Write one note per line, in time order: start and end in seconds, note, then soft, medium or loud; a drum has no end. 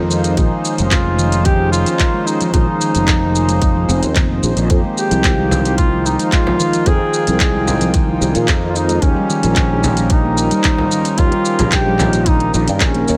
0.00 0.34 F2 medium
0.00 0.33 F3 medium
0.00 9.02 G#3 medium
0.00 0.34 A#3 medium
0.00 0.35 D#4 medium
0.00 9.02 D#4 medium
0.00 2.11 F4 medium
0.00 0.35 A#4 medium
0.00 10.62 C5 medium
0.10 0.37 D#3 medium
0.10 shaker medium
0.24 closed hi-hat soft
0.24 shaker soft
0.36 0.49 A#1 loud
0.36 0.75 F3 medium
0.36 0.75 A#3 medium
0.36 0.75 D#4 medium
0.36 0.76 G#4 medium
0.36 kick loud
0.36 closed hi-hat soft
0.36 shaker soft
0.51 0.64 F3 medium
0.51 4.70 C#4 medium
0.65 shaker medium
0.77 1.83 F1 medium
0.77 1.83 F3 medium
0.77 0.86 G#3 medium
0.77 1.84 A#3 medium
0.77 1.84 D#4 medium
0.77 1.85 G#4 medium
0.77 closed hi-hat soft
0.77 shaker soft
0.91 1.47 F4 loud
0.91 kick loud
0.91 clap loud
0.91 closed hi-hat medium
0.91 shaker soft
1.05 1.17 F3 medium
1.18 1.27 D#3 loud
1.18 shaker medium
1.32 1.44 F3 medium
1.32 closed hi-hat soft
1.32 shaker soft
1.45 1.85 D#3 medium
1.45 1.71 G4 loud
1.45 kick loud
1.45 closed hi-hat medium
1.45 shaker soft
1.72 2.27 F4 loud
1.72 shaker medium
1.84 2.49 F3 medium
1.84 1.99 F3 medium
1.84 2.50 A#3 medium
1.84 2.51 D#4 medium
1.84 closed hi-hat soft
1.84 shaker medium
1.89 2.52 C5 medium
1.99 kick loud
1.99 clap loud
1.99 closed hi-hat medium
1.99 shaker soft
2.14 2.21 G#3 medium
2.26 2.52 D#4 loud
2.26 shaker medium
2.41 2.52 F3 loud
2.41 closed hi-hat soft
2.41 shaker soft
2.52 2.65 A#1 medium
2.52 2.62 D#3 loud
2.52 2.91 F3 medium
2.52 2.91 A#3 medium
2.52 4.11 D#4 loud
2.52 2.91 D#4 medium
2.52 2.92 G#4 medium
2.52 kick loud
2.52 closed hi-hat medium
2.52 shaker soft
2.67 2.79 F3 medium
2.81 3.20 D#3 medium
2.81 shaker medium
2.92 3.88 F1 medium
2.92 3.99 F3 medium
2.92 4.00 A#3 medium
2.92 4.00 D#4 medium
2.92 closed hi-hat soft
2.92 shaker soft
2.97 4.01 G#4 medium
3.08 kick loud
3.08 clap loud
3.08 closed hi-hat medium
3.08 shaker soft
3.22 3.34 F3 medium
3.35 shaker medium
3.49 3.56 G#3 medium
3.49 closed hi-hat soft
3.49 shaker soft
3.62 kick loud
3.62 closed hi-hat soft
3.62 shaker soft
3.76 3.88 F3 loud
3.89 4.00 F1 loud
3.89 3.97 C4 loud
3.89 shaker medium
4.03 4.14 D#2 loud
4.03 4.15 A#3 medium
4.03 closed hi-hat soft
4.03 shaker soft
4.16 4.38 F1 medium
4.16 4.29 D#3 medium
4.16 kick loud
4.16 clap loud
4.16 closed hi-hat medium
4.16 shaker soft
4.43 4.54 A#1 medium
4.43 shaker medium
4.56 4.67 A#1 medium
4.56 4.64 A#3 medium
4.56 closed hi-hat soft
4.56 shaker soft
4.69 4.82 F2 loud
4.69 5.07 F3 medium
4.69 5.07 A#3 medium
4.69 5.08 D#4 medium
4.69 5.08 G4 medium
4.69 kick loud
4.69 closed hi-hat soft
4.69 shaker soft
4.84 4.91 G#3 medium
4.84 10.42 F4 medium
4.97 5.74 G4 loud
4.97 shaker medium
5.09 6.15 C2 medium
5.09 6.15 F3 medium
5.09 5.23 F3 loud
5.09 6.16 A#3 medium
5.09 6.16 D#4 medium
5.09 closed hi-hat soft
5.09 shaker soft
5.13 6.17 G4 medium
5.24 5.32 D#3 loud
5.24 kick loud
5.24 clap loud
5.24 closed hi-hat medium
5.24 shaker soft
5.38 5.50 F3 medium
5.51 5.91 D#3 medium
5.51 frame drum medium
5.51 shaker medium
5.65 closed hi-hat soft
5.65 shaker soft
5.77 6.07 F4 loud
5.77 kick loud
5.77 closed hi-hat medium
5.77 shaker soft
5.92 6.04 F3 medium
6.05 6.34 D#4 medium
6.05 shaker medium
6.18 6.82 F3 medium
6.18 6.27 G#3 medium
6.18 6.83 A#3 medium
6.18 6.83 D#4 medium
6.18 6.84 A#4 medium
6.18 closed hi-hat soft
6.18 shaker soft
6.32 6.89 F4 loud
6.32 kick loud
6.32 clap loud
6.32 closed hi-hat medium
6.32 shaker soft
6.46 6.58 F3 loud
6.46 frame drum loud
6.59 6.67 D#3 loud
6.59 shaker medium
6.73 6.85 F3 medium
6.73 closed hi-hat soft
6.73 shaker soft
6.85 6.98 F2 loud
6.85 7.26 D#3 medium
6.85 7.23 F3 medium
6.85 7.24 A#3 medium
6.85 7.24 D#4 medium
6.85 7.40 G#4 loud
6.85 7.24 G5 medium
6.85 kick loud
6.85 closed hi-hat medium
6.85 shaker soft
7.14 shaker medium
7.25 8.21 C2 medium
7.25 8.31 F3 medium
7.25 7.40 F3 medium
7.25 8.32 A#3 medium
7.25 8.33 D#4 medium
7.25 closed hi-hat soft
7.25 shaker soft
7.29 8.33 G5 medium
7.40 7.90 G#4 medium
7.40 kick loud
7.40 clap loud
7.40 closed hi-hat medium
7.40 shaker soft
7.54 7.62 G#3 medium
7.68 frame drum medium
7.68 shaker medium
7.81 7.93 F3 loud
7.81 closed hi-hat soft
7.81 shaker soft
7.94 8.02 D#3 loud
7.94 kick loud
7.94 closed hi-hat medium
7.94 shaker soft
8.09 8.20 F3 medium
8.21 8.33 C2 loud
8.21 8.61 D#3 medium
8.21 shaker medium
8.33 8.46 A#2 loud
8.33 8.98 F3 medium
8.33 8.99 A#3 medium
8.33 8.99 D#4 medium
8.33 9.00 A#4 medium
8.33 closed hi-hat soft
8.33 shaker soft
8.48 8.99 F2 medium
8.48 kick loud
8.48 clap loud
8.48 closed hi-hat medium
8.48 shaker soft
8.62 8.75 F3 medium
8.69 8.77 F4 medium
8.76 9.05 D#4 medium
8.76 shaker medium
8.89 8.97 G#3 medium
8.89 closed hi-hat soft
8.89 shaker soft
9.01 9.14 D#2 loud
9.01 9.39 F3 medium
9.01 13.17 G3 medium
9.01 9.40 A#3 medium
9.01 10.10 C#4 loud
9.01 9.40 D#4 medium
9.01 9.40 G4 medium
9.01 kick loud
9.01 closed hi-hat medium
9.01 shaker soft
9.16 9.28 G3 loud
9.16 13.17 D#4 medium
9.26 9.37 D#3 loud
9.26 13.17 C#4 medium
9.30 shaker medium
9.40 10.48 A#1 loud
9.40 10.48 F3 medium
9.40 9.55 G3 medium
9.40 10.48 A#3 medium
9.40 13.17 A#4 medium
9.40 closed hi-hat soft
9.44 10.49 D#4 medium
9.44 10.50 G4 medium
9.44 shaker soft
9.56 9.96 D#3 medium
9.56 kick loud
9.56 clap loud
9.56 closed hi-hat medium
9.56 shaker soft
9.84 frame drum medium
9.84 shaker medium
9.97 10.10 G3 medium
9.97 closed hi-hat soft
9.97 shaker soft
10.10 11.20 D#4 loud
10.10 kick loud
10.10 closed hi-hat medium
10.10 shaker soft
10.25 10.32 A#3 medium
10.37 shaker medium
10.50 11.15 F3 medium
10.50 10.63 G3 loud
10.50 11.15 A#3 medium
10.50 11.16 D#4 medium
10.50 11.17 C5 medium
10.50 closed hi-hat soft
10.50 shaker soft
10.64 10.73 D#3 loud
10.64 kick loud
10.64 clap loud
10.64 closed hi-hat medium
10.64 shaker soft
10.78 10.90 G3 medium
10.78 frame drum medium
10.91 11.31 D#3 medium
10.91 shaker medium
11.05 closed hi-hat soft
11.05 shaker soft
11.18 11.30 D#2 loud
11.18 11.56 F3 medium
11.18 11.56 A#3 medium
11.18 11.57 D#4 medium
11.18 11.73 F4 loud
11.18 11.57 G4 medium
11.18 kick loud
11.18 closed hi-hat medium
11.18 shaker soft
11.32 11.45 G3 medium
11.32 closed hi-hat soft
11.45 shaker medium
11.58 12.53 A#1 medium
11.58 12.64 F3 medium
11.58 12.65 A#3 medium
11.58 11.67 A#3 medium
11.58 12.66 D#4 medium
11.58 12.66 G4 medium
11.58 closed hi-hat soft
11.58 frame drum medium
11.58 shaker soft
11.72 12.29 G4 loud
11.72 kick loud
11.72 clap loud
11.72 closed hi-hat medium
11.72 shaker soft
11.87 11.98 G3 loud
11.99 12.08 D#3 medium
11.99 clap soft
11.99 frame drum loud
11.99 shaker medium
12.13 12.25 G3 medium
12.13 closed hi-hat soft
12.13 shaker soft
12.26 12.39 D#3 medium
12.26 12.54 D#4 loud
12.26 kick loud
12.26 closed hi-hat medium
12.26 shaker soft
12.40 closed hi-hat soft
12.54 12.65 A#1 loud
12.54 12.66 D#4 loud
12.54 shaker medium
12.68 12.79 G2 loud
12.68 12.79 D#4 medium
12.68 closed hi-hat soft
12.68 shaker soft
12.80 13.03 A#1 medium
12.80 13.17 C#4 medium
12.80 kick loud
12.80 clap loud
12.80 closed hi-hat medium
12.80 shaker soft
12.94 13.06 A#3 loud
12.94 closed hi-hat soft
13.08 13.17 D#2 loud
13.08 shaker medium